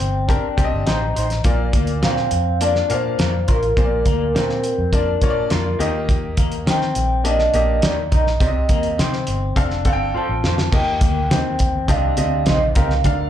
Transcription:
Already playing: clean electric guitar C4, vibraphone G5
0.00 fingered electric bass G1
0.28 grand piano C4 G4 A#4, clean electric guitar D4, kick, closed hi-hat
0.57 fingered electric bass C2, grand piano C4 G4 D5, kick, closed hi-hat
0.64 grand piano D#5
0.72 fingered electric bass G1
0.86 fingered electric bass A1, clean electric guitar D#4 G4 C5, snare, closed hi-hat
1.15 fingered electric bass A1, clean electric guitar D#4 G4 C5, closed hi-hat
1.30 snare, closed hi-hat
1.44 fingered electric bass A#1, grand piano A#2 A#3 F4 D5, kick, closed hi-hat
1.73 fingered electric bass D2, clean electric guitar A#3, kick, closed hi-hat
1.87 closed hi-hat
2.02 fingered electric bass A#2, clean electric guitar C4 D4 F4 A#4, vibraphone F5, snare, closed hi-hat
2.17 snare
2.31 fingered electric bass F2, closed hi-hat
2.61 grand piano A#3 F4 D5, clean electric guitar D4, vibraphone D5, closed hi-hat
2.75 snare
2.89 fingered electric bass A#2, grand piano A#3 F4 F5, vibraphone C5, closed hi-hat
3.18 fingered electric bass F2, clean electric guitar D4 F4 A#4, snare, closed hi-hat
3.47 fingered electric bass A1, clean electric guitar D4 F4 A#4, vibraphone A#4, kick, closed hi-hat
3.63 closed hi-hat
3.77 fingered electric bass A#1, grand piano A#2 A#3 F4 C5, kick, closed hi-hat
3.84 grand piano D5
4.05 fingered electric bass D2, clean electric guitar A#3, kick, closed hi-hat
4.35 fingered electric bass A#2, clean electric guitar C4 D4 F4 A#4, snare, closed hi-hat
4.50 snare
4.64 closed hi-hat
4.78 fingered electric bass F2
4.93 grand piano A#3 F4 D5, clean electric guitar D4, kick, closed hi-hat
5.21 fingered electric bass A#2, grand piano A#3 F4 C#5, kick, closed hi-hat
5.30 grand piano D5
5.50 fingered electric bass F2, clean electric guitar D4 F4 A#4, snare, closed hi-hat
5.79 fingered electric bass D#2, grand piano D#3 A#3 G4 D#5, clean electric guitar D#4 G4 A#4, closed hi-hat
6.09 kick, closed hi-hat
6.37 fingered electric bass D#2, clean electric guitar A#3, kick, closed hi-hat
6.52 closed hi-hat
6.66 fingered electric bass D#3, clean electric guitar C4 D#4 G4 A#4, snare, closed hi-hat
6.71 vibraphone G5
6.81 snare
6.95 fingered electric bass A#1, closed hi-hat
7.24 grand piano A#3 G4 D#5, clean electric guitar D4, closed hi-hat
7.29 vibraphone D#5
7.39 snare
7.54 fingered electric bass A#1, grand piano A#3 G4 D#5, closed hi-hat
7.82 fingered electric bass D#2, clean electric guitar D#4 G4 A#4, vibraphone D5, snare, closed hi-hat
8.11 fingered electric bass A#1, clean electric guitar D#4 G4 A#4, vibraphone D#5, kick, closed hi-hat
8.27 snare
8.40 fingered electric bass C2, grand piano C3 C4 G4 D5, kick, closed hi-hat
8.48 grand piano D#5
8.69 fingered electric bass D#2, clean electric guitar A#3, kick, closed hi-hat
8.83 closed hi-hat
8.98 fingered electric bass C3, clean electric guitar C4 D#4 G4 C5, snare, closed hi-hat
9.13 snare
9.27 fingered electric bass G1, closed hi-hat
9.56 fingered electric bass F1, grand piano C4 A4 F5, clean electric guitar D4, kick, closed hi-hat
9.70 snare
9.85 fingered electric bass G1, grand piano C4 A4 F#5, vibraphone F5, kick, closed hi-hat
9.93 grand piano G5
10.14 clean electric guitar F4 A4 C5, vibraphone A5, muted fingered electric bass stroke
10.29 fingered electric bass A1
10.43 fingered electric bass F2, clean electric guitar F4 A4 C5, snare
10.58 snare
10.72 fingered electric bass D#2, grand piano D#3 A#3 G4 D#5, vibraphone G5, kick, crash, muted conga
11.01 fingered electric bass D2, clean electric guitar A#3, kick, closed hi-hat, muted conga
11.30 fingered electric bass D#2, clean electric guitar A#3 C4 D#4 G4, snare, closed hi-hat, high conga
11.59 kick, closed hi-hat
11.76 fingered electric bass D#2
11.88 fingered electric bass C2, grand piano C3 C4 G4 D#5, clean electric guitar D4, vibraphone F5, kick, closed hi-hat, muted conga
12.17 fingered electric bass D2, grand piano C4 G4 D#5, closed hi-hat, muted conga
12.46 fingered electric bass A#1, clean electric guitar D#4 G4 C5, vibraphone D#5, snare, closed hi-hat, high conga
12.75 fingered electric bass C2, grand piano C4 G4 A#4, clean electric guitar D#4, vibraphone F5, kick, closed hi-hat, high conga
12.90 snare, high conga
13.04 fingered electric bass D2, grand piano D3 D4 A#4 F5, kick, closed hi-hat, muted conga

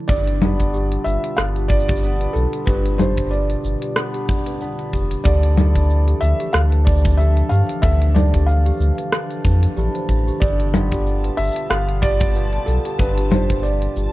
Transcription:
Already playing: hammered dulcimer D3 D4 E4 A4
0.08 sub bass G1, hammered dulcimer G2, ambient pad B2 D3 G3 F4, felt piano D5, kick, shaker
0.14 shaker
0.19 shaker
0.23 shaker
0.27 closed hi-hat, shaker
0.41 hammered dulcimer B3 D4 B4, celesta G4, low conga, shaker
0.60 kick, closed hi-hat, shaker
0.73 celesta G4, shaker
0.92 closed hi-hat, shaker
1.04 sub bass G1, celesta B4, felt piano E5, shaker
1.24 closed hi-hat, shaker
1.37 sub bass G1, hammered dulcimer B3 D4 B4, felt piano F5, cross-stick, shaker
1.56 celesta G4, closed hi-hat, shaker
1.68 felt piano D5, kick, shaker
1.80 shaker
1.88 celesta G4, kick, closed hi-hat, shaker
1.96 shaker
2.02 hammered dulcimer B3 D4 B4, shaker
2.20 celesta B4, closed hi-hat, shaker
2.33 sub bass B1, felt piano A4, shaker
2.53 closed hi-hat, shaker
2.66 sub bass G1, hammered dulcimer G2, celesta G4, felt piano B4, kick, shaker
2.86 closed hi-hat, shaker
2.98 hammered dulcimer D4, celesta G4, felt piano C5, low conga, shaker
3.18 kick, closed hi-hat, shaker
3.31 celesta B4, felt piano D5, shaker
3.50 closed hi-hat, shaker
3.64 sub bass G1, shaker
3.82 celesta G4, closed hi-hat, shaker
3.96 hammered dulcimer B3 D4 B4, cross-stick, shaker
4.14 celesta G4, closed hi-hat, shaker
4.29 kick, shaker
4.46 celesta B4, closed hi-hat, shaker
4.61 hammered dulcimer B3 D4 B4, shaker
4.79 closed hi-hat, shaker
4.93 sub bass F1, celesta G4, kick, shaker
5.11 closed hi-hat, shaker
5.24 sub bass D2, hammered dulcimer D3, ambient pad E3 F3 A3, celesta G4, felt piano D5, kick, shaker
5.43 closed hi-hat, shaker
5.57 hammered dulcimer D4 E4 A4, celesta B4, low conga, shaker
5.75 kick, closed hi-hat, shaker
5.90 shaker
6.07 celesta G4, closed hi-hat, shaker
6.21 sub bass D2, felt piano E5, shaker
6.40 celesta G4, closed hi-hat, shaker
6.53 sub bass D2, hammered dulcimer D4 A4, felt piano F5, cross-stick, shaker
6.72 celesta B4, closed hi-hat, shaker
6.85 felt piano D5, kick, shaker
6.98 shaker
7.05 kick, closed hi-hat, shaker
7.09 shaker
7.17 hammered dulcimer D4 A4, celesta G4, felt piano E5, shaker
7.37 closed hi-hat, shaker
7.49 sub bass G2, celesta G4, felt piano F5, shaker
7.69 closed hi-hat, shaker
7.82 sub bass D2, hammered dulcimer D3, celesta B4, felt piano E5, kick, shaker
8.02 closed hi-hat, shaker
8.14 hammered dulcimer D4 A4, felt piano D5, low conga, shaker
8.33 celesta G4, kick, closed hi-hat, shaker
8.47 felt piano F5, shaker
8.66 celesta G4, closed hi-hat, shaker
8.70 shaker
8.74 shaker
8.77 sub bass D2, shaker
8.81 shaker
8.98 celesta B4, closed hi-hat, shaker
9.12 hammered dulcimer D4 A4, cross-stick, shaker
9.30 closed hi-hat, shaker
9.45 sub bass F2, celesta B4, kick, shaker
9.63 closed hi-hat, shaker
9.76 sub bass A1, hammered dulcimer D4 E4 A4, celesta G4, shaker
9.95 celesta C5, closed hi-hat, shaker
10.09 sub bass A1, kick, shaker
10.27 celesta G4, shaker
10.40 sub bass G1, hammered dulcimer G2, ambient pad B2 G3 F4, felt piano D5, synth texture A5, kick, shaker
10.60 celesta G4, closed hi-hat, shaker
10.74 hammered dulcimer B3 F4 G4, low conga, shaker
10.92 celesta G4, kick, closed hi-hat, shaker
11.06 shaker
11.24 celesta B4, closed hi-hat, shaker
11.37 sub bass G1, felt piano E5, shaker
11.41 shaker
11.44 shaker
11.46 shaker
11.49 shaker
11.51 shaker
11.54 closed hi-hat, shaker
11.57 shaker
11.70 sub bass G1, hammered dulcimer B3 F4 G4, celesta G4, felt piano F5, cross-stick, shaker
11.89 closed hi-hat, shaker
12.02 celesta G4, felt piano D5, kick, shaker
12.21 kick, closed hi-hat, shaker
12.35 hammered dulcimer B3 F4 G4, celesta B4, shaker
12.53 closed hi-hat, shaker
12.66 sub bass B1, felt piano A4, shaker
12.85 celesta G4, closed hi-hat, shaker
12.98 sub bass G1, hammered dulcimer G2, felt piano B4, kick, shaker
13.17 celesta G4, closed hi-hat, shaker
13.31 hammered dulcimer F4 G4, felt piano C5, low conga, shaker
13.49 celesta B4, kick, closed hi-hat, shaker
13.63 felt piano D5, shaker
13.82 closed hi-hat, shaker
13.96 sub bass G1, celesta G4, shaker

